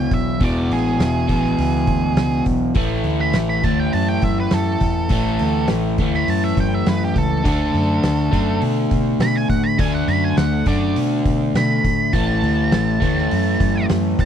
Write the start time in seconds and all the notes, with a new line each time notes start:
Already playing: E2 B2 E3 G5
0.11 B1 E5, kick, open hi-hat
0.40 E1 E2 B2 E3, kick, open hi-hat
0.44 D5
0.69 A1 G#4, open hi-hat
0.99 E1, snare, open hi-hat
1.28 A1 E2 B2 E3, kick, open hi-hat
1.45 snare
1.59 C#2, open hi-hat
1.87 D2, kick, open hi-hat
2.16 C#2, snare, open hi-hat
2.46 B1, kick, open hi-hat
2.75 A1 A2 E3 A3, kick, open hi-hat
3.04 D2, open hi-hat
3.21 B5
3.33 A1, snare, open hi-hat
3.50 B5
3.63 D2 A2 E3 A3 A5, kick, open hi-hat
3.79 G5
3.93 F#2 A5, open hi-hat
4.08 G5
4.22 F#2 E5, kick, open hi-hat
4.40 B4
4.51 F#2 A4, snare, open hi-hat
4.80 E2, kick, open hi-hat
5.09 A1 A2 E3 A3, kick, open hi-hat
5.39 D2, open hi-hat
5.68 A1, snare, open hi-hat
5.98 D2 A2 E3 A3, kick, open hi-hat
6.14 B5, snare
6.28 F#2 A5, open hi-hat
6.44 E5
6.57 F#2 G5, kick, open hi-hat
6.74 E5
6.86 F#2 B4, snare, open hi-hat
7.04 G4
7.16 C#2 A4, kick, open hi-hat
7.44 D2 D3 A3 D4, kick, open hi-hat
7.48 A4
7.74 F#2, open hi-hat
8.03 D2, snare, open hi-hat
8.31 F#2 D3 A3 D4, kick, open hi-hat
8.62 B2, open hi-hat
8.91 B2, kick, open hi-hat
9.19 B2 B5, snare, open hi-hat
9.35 G#5
9.49 A2 F#5, kick, open hi-hat
9.64 B5
9.78 D2 D3 A3 D4 G#5, kick, open hi-hat
9.95 F#5
10.08 F#2 B5, open hi-hat
10.24 G#5
10.37 D2 F#5, snare, open hi-hat
10.66 F#2 D3 A3 D4 D5, kick, open hi-hat
10.96 B2, open hi-hat
11.26 B2, kick, open hi-hat
11.54 B2 B5, snare, open hi-hat
11.84 A2, kick, open hi-hat
12.13 A1 A2 E3 A3 A5, kick, open hi-hat
12.42 D2, open hi-hat
12.72 A1, snare, open hi-hat
13.00 D2 A2 E3 A3, kick, open hi-hat
13.18 snare
13.31 F#2, open hi-hat
13.60 F#2, kick, open hi-hat
13.89 F#2, snare, open hi-hat
14.19 E2 B5, kick, open hi-hat